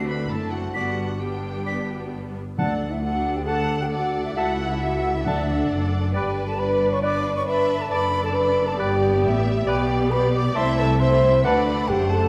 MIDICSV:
0, 0, Header, 1, 11, 480
1, 0, Start_track
1, 0, Key_signature, 2, "major"
1, 0, Tempo, 455581
1, 782, Time_signature, 4, 2, 24, 8
1, 3662, Tempo, 442804
1, 13210, End_track
2, 0, Start_track
2, 0, Title_t, "Cor anglais"
2, 0, Program_c, 0, 69
2, 797, Note_on_c, 0, 74, 50
2, 961, Note_off_c, 0, 74, 0
2, 1748, Note_on_c, 0, 74, 43
2, 1918, Note_off_c, 0, 74, 0
2, 2723, Note_on_c, 0, 81, 54
2, 2887, Note_off_c, 0, 81, 0
2, 3662, Note_on_c, 0, 81, 54
2, 3831, Note_off_c, 0, 81, 0
2, 4637, Note_on_c, 0, 81, 58
2, 4803, Note_off_c, 0, 81, 0
2, 5613, Note_on_c, 0, 81, 59
2, 5776, Note_off_c, 0, 81, 0
2, 6573, Note_on_c, 0, 71, 58
2, 6733, Note_off_c, 0, 71, 0
2, 7514, Note_on_c, 0, 71, 63
2, 7681, Note_off_c, 0, 71, 0
2, 8466, Note_on_c, 0, 81, 68
2, 8632, Note_off_c, 0, 81, 0
2, 9428, Note_on_c, 0, 71, 74
2, 9594, Note_off_c, 0, 71, 0
2, 10390, Note_on_c, 0, 71, 73
2, 10555, Note_off_c, 0, 71, 0
2, 11334, Note_on_c, 0, 81, 71
2, 11505, Note_off_c, 0, 81, 0
2, 12316, Note_on_c, 0, 81, 70
2, 12479, Note_off_c, 0, 81, 0
2, 13210, End_track
3, 0, Start_track
3, 0, Title_t, "Flute"
3, 0, Program_c, 1, 73
3, 779, Note_on_c, 1, 95, 50
3, 1007, Note_off_c, 1, 95, 0
3, 1756, Note_on_c, 1, 95, 42
3, 1979, Note_off_c, 1, 95, 0
3, 2717, Note_on_c, 1, 74, 62
3, 3068, Note_on_c, 1, 76, 53
3, 3084, Note_off_c, 1, 74, 0
3, 3185, Note_off_c, 1, 76, 0
3, 3191, Note_on_c, 1, 78, 62
3, 3546, Note_on_c, 1, 79, 63
3, 3562, Note_off_c, 1, 78, 0
3, 3645, Note_off_c, 1, 79, 0
3, 3651, Note_on_c, 1, 81, 70
3, 4012, Note_off_c, 1, 81, 0
3, 4025, Note_on_c, 1, 79, 60
3, 4080, Note_off_c, 1, 79, 0
3, 4131, Note_on_c, 1, 78, 70
3, 4488, Note_off_c, 1, 78, 0
3, 4495, Note_on_c, 1, 76, 65
3, 4605, Note_off_c, 1, 76, 0
3, 4612, Note_on_c, 1, 78, 65
3, 4973, Note_off_c, 1, 78, 0
3, 4980, Note_on_c, 1, 76, 56
3, 5037, Note_off_c, 1, 76, 0
3, 5104, Note_on_c, 1, 78, 72
3, 5464, Note_off_c, 1, 78, 0
3, 5477, Note_on_c, 1, 76, 61
3, 5531, Note_off_c, 1, 76, 0
3, 5589, Note_on_c, 1, 74, 63
3, 6300, Note_off_c, 1, 74, 0
3, 6545, Note_on_c, 1, 79, 63
3, 6881, Note_off_c, 1, 79, 0
3, 6909, Note_on_c, 1, 81, 66
3, 7037, Note_on_c, 1, 83, 68
3, 7053, Note_off_c, 1, 81, 0
3, 7394, Note_off_c, 1, 83, 0
3, 7402, Note_on_c, 1, 85, 75
3, 7507, Note_off_c, 1, 85, 0
3, 7513, Note_on_c, 1, 86, 88
3, 7867, Note_off_c, 1, 86, 0
3, 7877, Note_on_c, 1, 85, 73
3, 7990, Note_off_c, 1, 85, 0
3, 7996, Note_on_c, 1, 83, 81
3, 8363, Note_on_c, 1, 81, 77
3, 8380, Note_off_c, 1, 83, 0
3, 8472, Note_off_c, 1, 81, 0
3, 8479, Note_on_c, 1, 83, 86
3, 8823, Note_off_c, 1, 83, 0
3, 8830, Note_on_c, 1, 81, 70
3, 8948, Note_on_c, 1, 83, 77
3, 8965, Note_off_c, 1, 81, 0
3, 9299, Note_on_c, 1, 81, 71
3, 9315, Note_off_c, 1, 83, 0
3, 9421, Note_off_c, 1, 81, 0
3, 9429, Note_on_c, 1, 79, 83
3, 10130, Note_off_c, 1, 79, 0
3, 10380, Note_on_c, 1, 79, 87
3, 10859, Note_on_c, 1, 83, 90
3, 10875, Note_off_c, 1, 79, 0
3, 11098, Note_off_c, 1, 83, 0
3, 11104, Note_on_c, 1, 86, 95
3, 11343, Note_on_c, 1, 84, 106
3, 11359, Note_off_c, 1, 86, 0
3, 11569, Note_off_c, 1, 84, 0
3, 11575, Note_on_c, 1, 81, 85
3, 11816, Note_on_c, 1, 84, 84
3, 11833, Note_off_c, 1, 81, 0
3, 12295, Note_off_c, 1, 84, 0
3, 12302, Note_on_c, 1, 83, 80
3, 12770, Note_on_c, 1, 79, 82
3, 12786, Note_off_c, 1, 83, 0
3, 13011, Note_on_c, 1, 81, 80
3, 13027, Note_off_c, 1, 79, 0
3, 13210, Note_off_c, 1, 81, 0
3, 13210, End_track
4, 0, Start_track
4, 0, Title_t, "Violin section"
4, 0, Program_c, 2, 48
4, 71, Note_on_c, 2, 83, 63
4, 300, Note_off_c, 2, 83, 0
4, 304, Note_on_c, 2, 81, 56
4, 540, Note_on_c, 2, 78, 54
4, 542, Note_off_c, 2, 81, 0
4, 768, Note_off_c, 2, 78, 0
4, 781, Note_on_c, 2, 78, 58
4, 1258, Note_off_c, 2, 78, 0
4, 1266, Note_on_c, 2, 79, 53
4, 2235, Note_off_c, 2, 79, 0
4, 2725, Note_on_c, 2, 78, 54
4, 3161, Note_off_c, 2, 78, 0
4, 3196, Note_on_c, 2, 78, 52
4, 3650, Note_off_c, 2, 78, 0
4, 3663, Note_on_c, 2, 78, 60
4, 4136, Note_off_c, 2, 78, 0
4, 4152, Note_on_c, 2, 78, 56
4, 4622, Note_off_c, 2, 78, 0
4, 4624, Note_on_c, 2, 76, 56
4, 5595, Note_off_c, 2, 76, 0
4, 5597, Note_on_c, 2, 78, 60
4, 6537, Note_off_c, 2, 78, 0
4, 6553, Note_on_c, 2, 74, 57
4, 7015, Note_off_c, 2, 74, 0
4, 7028, Note_on_c, 2, 74, 65
4, 7501, Note_off_c, 2, 74, 0
4, 7523, Note_on_c, 2, 74, 64
4, 7979, Note_off_c, 2, 74, 0
4, 7992, Note_on_c, 2, 74, 67
4, 8448, Note_off_c, 2, 74, 0
4, 8461, Note_on_c, 2, 74, 72
4, 9399, Note_off_c, 2, 74, 0
4, 9420, Note_on_c, 2, 74, 71
4, 10361, Note_off_c, 2, 74, 0
4, 10379, Note_on_c, 2, 74, 63
4, 11324, Note_off_c, 2, 74, 0
4, 11349, Note_on_c, 2, 76, 76
4, 11814, Note_off_c, 2, 76, 0
4, 11827, Note_on_c, 2, 76, 62
4, 12296, Note_off_c, 2, 76, 0
4, 12296, Note_on_c, 2, 78, 72
4, 13210, Note_off_c, 2, 78, 0
4, 13210, End_track
5, 0, Start_track
5, 0, Title_t, "Clarinet"
5, 0, Program_c, 3, 71
5, 61, Note_on_c, 3, 71, 60
5, 304, Note_on_c, 3, 69, 51
5, 320, Note_off_c, 3, 71, 0
5, 545, Note_on_c, 3, 66, 52
5, 561, Note_off_c, 3, 69, 0
5, 784, Note_off_c, 3, 66, 0
5, 791, Note_on_c, 3, 66, 65
5, 1263, Note_off_c, 3, 66, 0
5, 1278, Note_on_c, 3, 67, 42
5, 2222, Note_off_c, 3, 67, 0
5, 2723, Note_on_c, 3, 78, 66
5, 2887, Note_off_c, 3, 78, 0
5, 3658, Note_on_c, 3, 78, 55
5, 3828, Note_off_c, 3, 78, 0
5, 4625, Note_on_c, 3, 76, 67
5, 4796, Note_off_c, 3, 76, 0
5, 5582, Note_on_c, 3, 78, 60
5, 5756, Note_off_c, 3, 78, 0
5, 6544, Note_on_c, 3, 74, 70
5, 6714, Note_off_c, 3, 74, 0
5, 7504, Note_on_c, 3, 74, 68
5, 7675, Note_off_c, 3, 74, 0
5, 8467, Note_on_c, 3, 74, 76
5, 8633, Note_off_c, 3, 74, 0
5, 9423, Note_on_c, 3, 74, 74
5, 9590, Note_off_c, 3, 74, 0
5, 10373, Note_on_c, 3, 74, 88
5, 10544, Note_off_c, 3, 74, 0
5, 11342, Note_on_c, 3, 76, 73
5, 11511, Note_off_c, 3, 76, 0
5, 12299, Note_on_c, 3, 78, 84
5, 12468, Note_off_c, 3, 78, 0
5, 13210, End_track
6, 0, Start_track
6, 0, Title_t, "Violin section"
6, 0, Program_c, 4, 48
6, 0, Note_on_c, 4, 60, 47
6, 0, Note_on_c, 4, 62, 51
6, 291, Note_off_c, 4, 60, 0
6, 292, Note_off_c, 4, 62, 0
6, 304, Note_on_c, 4, 60, 43
6, 304, Note_on_c, 4, 62, 48
6, 761, Note_off_c, 4, 62, 0
6, 773, Note_on_c, 4, 59, 44
6, 774, Note_off_c, 4, 60, 0
6, 774, Note_on_c, 4, 62, 47
6, 1251, Note_off_c, 4, 59, 0
6, 1255, Note_off_c, 4, 62, 0
6, 1264, Note_on_c, 4, 59, 46
6, 1273, Note_on_c, 4, 62, 44
6, 2479, Note_off_c, 4, 59, 0
6, 2484, Note_off_c, 4, 62, 0
6, 3665, Note_on_c, 4, 78, 68
6, 4113, Note_off_c, 4, 78, 0
6, 4164, Note_on_c, 4, 74, 58
6, 4627, Note_on_c, 4, 78, 72
6, 4638, Note_off_c, 4, 74, 0
6, 5113, Note_off_c, 4, 78, 0
6, 5115, Note_on_c, 4, 76, 60
6, 6078, Note_on_c, 4, 74, 64
6, 6080, Note_off_c, 4, 76, 0
6, 6554, Note_on_c, 4, 71, 70
6, 6556, Note_off_c, 4, 74, 0
6, 7492, Note_off_c, 4, 71, 0
6, 7523, Note_on_c, 4, 71, 69
6, 7990, Note_off_c, 4, 71, 0
6, 7995, Note_on_c, 4, 76, 74
6, 8461, Note_off_c, 4, 76, 0
6, 8471, Note_on_c, 4, 74, 64
6, 9900, Note_on_c, 4, 76, 75
6, 9903, Note_off_c, 4, 74, 0
6, 10370, Note_off_c, 4, 76, 0
6, 10373, Note_on_c, 4, 74, 81
6, 10853, Note_off_c, 4, 74, 0
6, 10866, Note_on_c, 4, 74, 79
6, 11337, Note_off_c, 4, 74, 0
6, 11346, Note_on_c, 4, 76, 87
6, 11816, Note_off_c, 4, 76, 0
6, 11829, Note_on_c, 4, 76, 76
6, 12296, Note_off_c, 4, 76, 0
6, 12305, Note_on_c, 4, 74, 75
6, 12783, Note_off_c, 4, 74, 0
6, 12788, Note_on_c, 4, 72, 74
6, 13210, Note_off_c, 4, 72, 0
6, 13210, End_track
7, 0, Start_track
7, 0, Title_t, "French horn section"
7, 0, Program_c, 5, 60
7, 0, Note_on_c, 5, 66, 52
7, 292, Note_off_c, 5, 66, 0
7, 302, Note_on_c, 5, 64, 49
7, 773, Note_off_c, 5, 64, 0
7, 788, Note_on_c, 5, 62, 43
7, 1223, Note_off_c, 5, 62, 0
7, 1269, Note_on_c, 5, 67, 49
7, 1720, Note_off_c, 5, 67, 0
7, 1751, Note_on_c, 5, 62, 52
7, 1988, Note_on_c, 5, 66, 56
7, 1989, Note_off_c, 5, 62, 0
7, 2233, Note_off_c, 5, 66, 0
7, 2236, Note_on_c, 5, 67, 46
7, 2574, Note_off_c, 5, 67, 0
7, 2719, Note_on_c, 5, 62, 65
7, 3048, Note_off_c, 5, 62, 0
7, 3071, Note_on_c, 5, 64, 68
7, 3185, Note_on_c, 5, 66, 78
7, 3190, Note_off_c, 5, 64, 0
7, 3537, Note_on_c, 5, 67, 81
7, 3541, Note_off_c, 5, 66, 0
7, 3657, Note_on_c, 5, 69, 80
7, 3658, Note_off_c, 5, 67, 0
7, 4023, Note_off_c, 5, 69, 0
7, 4029, Note_on_c, 5, 67, 70
7, 4082, Note_off_c, 5, 67, 0
7, 4162, Note_on_c, 5, 66, 81
7, 4508, Note_off_c, 5, 66, 0
7, 4509, Note_on_c, 5, 64, 63
7, 4624, Note_on_c, 5, 66, 80
7, 4630, Note_off_c, 5, 64, 0
7, 4984, Note_off_c, 5, 66, 0
7, 4999, Note_on_c, 5, 64, 63
7, 5052, Note_off_c, 5, 64, 0
7, 5115, Note_on_c, 5, 66, 77
7, 5470, Note_off_c, 5, 66, 0
7, 5485, Note_on_c, 5, 64, 77
7, 5599, Note_off_c, 5, 64, 0
7, 5600, Note_on_c, 5, 62, 70
7, 6305, Note_off_c, 5, 62, 0
7, 6550, Note_on_c, 5, 67, 69
7, 6884, Note_off_c, 5, 67, 0
7, 6914, Note_on_c, 5, 69, 73
7, 6968, Note_off_c, 5, 69, 0
7, 7032, Note_on_c, 5, 71, 90
7, 7384, Note_off_c, 5, 71, 0
7, 7386, Note_on_c, 5, 73, 99
7, 7502, Note_on_c, 5, 74, 95
7, 7507, Note_off_c, 5, 73, 0
7, 7861, Note_off_c, 5, 74, 0
7, 7883, Note_on_c, 5, 73, 77
7, 7988, Note_on_c, 5, 71, 96
7, 7998, Note_off_c, 5, 73, 0
7, 8344, Note_on_c, 5, 69, 70
7, 8349, Note_off_c, 5, 71, 0
7, 8459, Note_on_c, 5, 71, 87
7, 8464, Note_off_c, 5, 69, 0
7, 8813, Note_off_c, 5, 71, 0
7, 8820, Note_on_c, 5, 69, 74
7, 8875, Note_off_c, 5, 69, 0
7, 8923, Note_on_c, 5, 71, 102
7, 9285, Note_off_c, 5, 71, 0
7, 9292, Note_on_c, 5, 69, 87
7, 9416, Note_on_c, 5, 67, 92
7, 9417, Note_off_c, 5, 69, 0
7, 10124, Note_off_c, 5, 67, 0
7, 10370, Note_on_c, 5, 67, 99
7, 10823, Note_off_c, 5, 67, 0
7, 10857, Note_on_c, 5, 71, 100
7, 11101, Note_off_c, 5, 71, 0
7, 11102, Note_on_c, 5, 74, 96
7, 11339, Note_off_c, 5, 74, 0
7, 11359, Note_on_c, 5, 72, 110
7, 11592, Note_off_c, 5, 72, 0
7, 11600, Note_on_c, 5, 69, 98
7, 11833, Note_off_c, 5, 69, 0
7, 11840, Note_on_c, 5, 72, 114
7, 12302, Note_off_c, 5, 72, 0
7, 12306, Note_on_c, 5, 71, 102
7, 12774, Note_off_c, 5, 71, 0
7, 12784, Note_on_c, 5, 67, 101
7, 13025, Note_off_c, 5, 67, 0
7, 13027, Note_on_c, 5, 69, 92
7, 13210, Note_off_c, 5, 69, 0
7, 13210, End_track
8, 0, Start_track
8, 0, Title_t, "Viola section"
8, 0, Program_c, 6, 48
8, 0, Note_on_c, 6, 57, 58
8, 292, Note_off_c, 6, 57, 0
8, 304, Note_on_c, 6, 57, 50
8, 306, Note_off_c, 6, 57, 0
8, 306, Note_on_c, 6, 57, 48
8, 775, Note_off_c, 6, 57, 0
8, 779, Note_on_c, 6, 59, 46
8, 780, Note_on_c, 6, 55, 45
8, 1257, Note_off_c, 6, 59, 0
8, 1263, Note_off_c, 6, 55, 0
8, 1273, Note_on_c, 6, 59, 50
8, 1276, Note_on_c, 6, 55, 43
8, 2484, Note_off_c, 6, 59, 0
8, 2485, Note_off_c, 6, 55, 0
8, 2715, Note_on_c, 6, 69, 52
8, 2716, Note_on_c, 6, 62, 54
8, 3156, Note_off_c, 6, 62, 0
8, 3156, Note_off_c, 6, 69, 0
8, 3195, Note_on_c, 6, 62, 60
8, 3197, Note_on_c, 6, 69, 55
8, 3651, Note_off_c, 6, 62, 0
8, 3652, Note_off_c, 6, 69, 0
8, 3664, Note_on_c, 6, 62, 59
8, 3664, Note_on_c, 6, 69, 59
8, 4132, Note_off_c, 6, 62, 0
8, 4134, Note_off_c, 6, 69, 0
8, 4145, Note_on_c, 6, 62, 59
8, 4147, Note_on_c, 6, 69, 64
8, 4612, Note_off_c, 6, 69, 0
8, 4619, Note_off_c, 6, 62, 0
8, 4621, Note_on_c, 6, 64, 56
8, 4625, Note_on_c, 6, 69, 61
8, 5576, Note_off_c, 6, 69, 0
8, 5593, Note_off_c, 6, 64, 0
8, 5599, Note_on_c, 6, 62, 62
8, 5601, Note_on_c, 6, 69, 67
8, 6538, Note_off_c, 6, 62, 0
8, 6539, Note_off_c, 6, 69, 0
8, 6548, Note_on_c, 6, 71, 61
8, 6551, Note_on_c, 6, 62, 61
8, 7012, Note_off_c, 6, 62, 0
8, 7014, Note_off_c, 6, 71, 0
8, 7025, Note_on_c, 6, 62, 62
8, 7027, Note_on_c, 6, 71, 64
8, 7492, Note_off_c, 6, 62, 0
8, 7497, Note_off_c, 6, 71, 0
8, 7505, Note_on_c, 6, 62, 69
8, 7510, Note_on_c, 6, 71, 69
8, 7972, Note_off_c, 6, 71, 0
8, 7978, Note_off_c, 6, 62, 0
8, 7985, Note_on_c, 6, 71, 68
8, 7991, Note_on_c, 6, 62, 68
8, 8444, Note_off_c, 6, 62, 0
8, 8456, Note_off_c, 6, 71, 0
8, 8457, Note_on_c, 6, 62, 66
8, 8461, Note_on_c, 6, 69, 65
8, 9397, Note_off_c, 6, 62, 0
8, 9414, Note_on_c, 6, 59, 83
8, 9416, Note_on_c, 6, 67, 83
8, 9418, Note_off_c, 6, 69, 0
8, 10365, Note_off_c, 6, 59, 0
8, 10370, Note_off_c, 6, 67, 0
8, 10378, Note_on_c, 6, 59, 80
8, 10383, Note_on_c, 6, 67, 84
8, 11324, Note_off_c, 6, 59, 0
8, 11326, Note_off_c, 6, 67, 0
8, 11353, Note_on_c, 6, 57, 84
8, 11355, Note_on_c, 6, 64, 85
8, 11809, Note_off_c, 6, 64, 0
8, 11810, Note_off_c, 6, 57, 0
8, 11822, Note_on_c, 6, 64, 74
8, 11823, Note_on_c, 6, 57, 84
8, 12293, Note_off_c, 6, 64, 0
8, 12294, Note_off_c, 6, 57, 0
8, 12305, Note_on_c, 6, 57, 82
8, 12305, Note_on_c, 6, 62, 83
8, 13210, Note_off_c, 6, 57, 0
8, 13210, Note_off_c, 6, 62, 0
8, 13210, End_track
9, 0, Start_track
9, 0, Title_t, "Timpani"
9, 0, Program_c, 7, 47
9, 2723, Note_on_c, 7, 50, 76
9, 3386, Note_off_c, 7, 50, 0
9, 5598, Note_on_c, 7, 50, 67
9, 6275, Note_off_c, 7, 50, 0
9, 13210, End_track
10, 0, Start_track
10, 0, Title_t, "Cello section"
10, 0, Program_c, 8, 48
10, 0, Note_on_c, 8, 50, 54
10, 302, Note_off_c, 8, 50, 0
10, 308, Note_on_c, 8, 42, 47
10, 785, Note_on_c, 8, 43, 52
10, 786, Note_off_c, 8, 42, 0
10, 2473, Note_off_c, 8, 43, 0
10, 2723, Note_on_c, 8, 38, 68
10, 4587, Note_off_c, 8, 38, 0
10, 4630, Note_on_c, 8, 37, 69
10, 5579, Note_off_c, 8, 37, 0
10, 5600, Note_on_c, 8, 38, 66
10, 6081, Note_off_c, 8, 38, 0
10, 6081, Note_on_c, 8, 42, 60
10, 6548, Note_off_c, 8, 42, 0
10, 6562, Note_on_c, 8, 43, 72
10, 8469, Note_on_c, 8, 42, 79
10, 8473, Note_off_c, 8, 43, 0
10, 9404, Note_off_c, 8, 42, 0
10, 9425, Note_on_c, 8, 43, 78
10, 9902, Note_on_c, 8, 45, 70
10, 9903, Note_off_c, 8, 43, 0
10, 10380, Note_on_c, 8, 47, 85
10, 10381, Note_off_c, 8, 45, 0
10, 11325, Note_off_c, 8, 47, 0
10, 11345, Note_on_c, 8, 48, 81
10, 12286, Note_off_c, 8, 48, 0
10, 12299, Note_on_c, 8, 50, 72
10, 12780, Note_off_c, 8, 50, 0
10, 12782, Note_on_c, 8, 42, 70
10, 13210, Note_off_c, 8, 42, 0
10, 13210, End_track
11, 0, Start_track
11, 0, Title_t, "Double bass section"
11, 0, Program_c, 10, 48
11, 0, Note_on_c, 10, 38, 52
11, 299, Note_off_c, 10, 38, 0
11, 304, Note_on_c, 10, 30, 44
11, 780, Note_on_c, 10, 31, 48
11, 783, Note_off_c, 10, 30, 0
11, 2471, Note_off_c, 10, 31, 0
11, 2717, Note_on_c, 10, 38, 55
11, 4584, Note_off_c, 10, 38, 0
11, 4629, Note_on_c, 10, 37, 61
11, 5578, Note_off_c, 10, 37, 0
11, 5596, Note_on_c, 10, 38, 71
11, 6077, Note_on_c, 10, 30, 56
11, 6079, Note_off_c, 10, 38, 0
11, 6546, Note_off_c, 10, 30, 0
11, 6557, Note_on_c, 10, 31, 66
11, 8466, Note_on_c, 10, 30, 70
11, 8470, Note_off_c, 10, 31, 0
11, 9402, Note_off_c, 10, 30, 0
11, 9427, Note_on_c, 10, 31, 81
11, 9904, Note_off_c, 10, 31, 0
11, 9911, Note_on_c, 10, 33, 72
11, 10383, Note_on_c, 10, 35, 66
11, 10386, Note_off_c, 10, 33, 0
11, 11326, Note_off_c, 10, 35, 0
11, 11347, Note_on_c, 10, 36, 93
11, 12287, Note_off_c, 10, 36, 0
11, 12311, Note_on_c, 10, 38, 75
11, 12786, Note_off_c, 10, 38, 0
11, 12788, Note_on_c, 10, 30, 71
11, 13210, Note_off_c, 10, 30, 0
11, 13210, End_track
0, 0, End_of_file